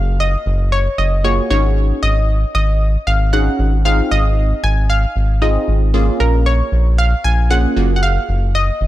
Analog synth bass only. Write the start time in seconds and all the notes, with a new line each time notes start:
Already playing: F#1
0.46 F#1
0.98 F#1
1.50 G#1
2.03 G#1
2.55 G#1
3.07 G#1
3.59 G#1
4.11 G#1
4.64 G#1
5.16 G#1
5.68 G#1
6.20 A#1
6.72 A#1
7.24 A#1
7.77 F#1
8.29 F#1
8.81 F#1